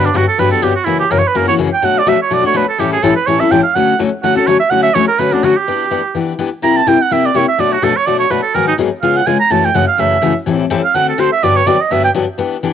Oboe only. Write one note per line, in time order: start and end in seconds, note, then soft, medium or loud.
0.05 0.18 D4 medium
0.17 0.28 F#4 medium
0.28 0.41 A4 medium
0.39 0.51 B4 medium
0.51 0.64 A4 medium
0.63 0.75 G4 medium
0.76 0.86 F#4 medium
0.85 0.98 E4 medium
1.00 1.12 G4 medium
1.11 1.20 A#4 medium
1.19 1.29 C#5 medium
1.28 1.38 B4 medium
1.36 1.48 A#4 medium
1.48 1.54 C#5 loud
1.73 1.86 G5 medium
1.85 2.00 F#5 medium
1.98 2.10 D5 loud
2.08 2.20 E5 loud
2.22 2.35 C#5 medium
2.33 2.45 D5 medium
2.46 2.59 C#5 medium
2.57 2.68 B4 medium
2.69 2.81 A4 medium
2.79 2.92 G4 medium
2.93 3.04 G#4 medium
3.03 3.15 A4 medium
3.16 3.28 B4 medium
3.26 3.41 C#5 medium
3.40 3.53 E5 medium
3.51 3.62 G5 medium
3.63 3.76 F5 medium
3.75 3.98 F#5 loud
4.23 4.35 F#5 loud
4.37 4.48 A4 medium
4.47 4.59 C#5 medium
4.59 4.71 E5 medium
4.70 4.82 F#5 loud
4.83 4.96 E5 loud
4.94 5.07 C#5 loud
5.08 5.20 A#4 medium
5.19 5.34 B4 medium
5.33 5.45 D4 medium
5.44 5.59 F#4 medium
5.57 6.15 G4 medium
6.64 6.78 A#5 medium
6.77 6.90 A5 loud
6.88 7.03 G5 medium
7.02 7.14 F#5 loud
7.12 7.27 E5 medium
7.26 7.38 D5 medium
7.37 7.48 C#5 medium
7.49 7.62 E5 loud
7.60 7.75 D5 medium
7.73 7.85 F#4 medium
7.84 7.98 A4 loud
7.97 8.08 C#5 medium
8.06 8.19 D5 medium
8.19 8.33 C#5 medium
8.31 8.42 B4 medium
8.43 8.56 A4 medium
8.54 8.67 A#4 medium
8.68 8.74 D#4 loud
9.02 9.18 F5 medium
9.17 9.28 F#5 medium
9.27 9.39 G#5 medium
9.40 9.52 A#5 loud
9.51 9.67 A5 medium
9.65 9.76 G5 medium
9.75 9.87 F#5 medium
9.87 10.02 F5 medium
10.00 10.36 E5 medium
10.84 10.96 F5 medium
10.95 11.08 F#5 loud
11.09 11.21 A4 medium
11.20 11.32 C5 medium
11.32 11.45 E5 loud
11.44 11.58 D5 medium
11.56 11.68 C#5 loud
11.66 11.82 D5 medium
11.81 11.93 D#5 medium
11.92 12.04 E5 medium
12.05 12.11 G5 loud